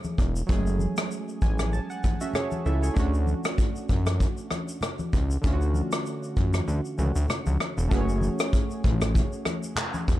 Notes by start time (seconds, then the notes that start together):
Already playing: F#3 A3 C#4 G#4
0.04 high conga, shaker
0.18 E1, kick, shaker
0.36 shaker
0.47 F#1 F#3 G#3 C#4, kick, shaker
0.52 A3 G#4
0.67 shaker
0.79 high conga, shaker
0.97 cross-stick, shaker
1.11 shaker
1.28 shaker
1.42 A1 G#5, kick, high conga, shaker
1.58 cross-stick, high conga, shaker
1.73 A5, shaker
1.90 F#5, shaker
2.04 kick, high conga, shaker
2.21 C#4 F#4 E5, shaker
2.33 C#4 G#4 C#5, cross-stick, low conga, shaker
2.51 high conga, shaker
2.66 C#2 E4 A4 E5, shaker
2.83 G#4 C#5, shaker
2.94 D2 A3 C#4 D4, kick, shaker
2.99 F#4
3.14 shaker
3.27 high conga, shaker
3.44 cross-stick, shaker
3.58 kick, shaker
3.76 shaker
3.89 F#2, kick, high conga, low conga, shaker
4.06 cross-stick, high conga, shaker
4.20 kick, shaker
4.38 shaker
4.51 cross-stick, high conga, shaker
4.68 shaker
4.81 cross-stick, low conga, shaker
4.99 high conga, shaker
5.13 C#2, kick, shaker
5.31 shaker
5.42 D2 D3 A3 C#4, kick, shaker
5.47 F4
5.53 F#4
5.61 shaker
5.74 high conga, shaker
5.92 cross-stick, shaker
6.06 shaker
6.23 shaker
6.37 F#2, kick, high conga, shaker
6.53 cross-stick, high conga, shaker
6.68 D2, shaker
6.85 shaker
6.98 C#2 D3 A3 C#4 F#4, high conga, shaker
7.16 D2, shaker
7.28 cross-stick, low conga, shaker
7.46 C#2, high conga, shaker
7.60 cross-stick, shaker
7.78 E1, shaker
7.89 F#1 A3 C#4 F#4 G#4, kick, shaker
7.94 B4
8.01 C#5
8.09 shaker
8.21 high conga, shaker
8.39 cross-stick, shaker
8.53 kick, shaker
8.71 shaker
8.84 A1, kick, high conga, low conga, shaker
9.00 cross-stick, high conga, shaker
9.15 kick, low conga, shaker
9.33 shaker
9.45 cross-stick, high conga, shaker
9.63 shaker
9.76 cross-stick, clap, low conga, shaker
9.94 high conga, shaker
10.08 E1, kick, shaker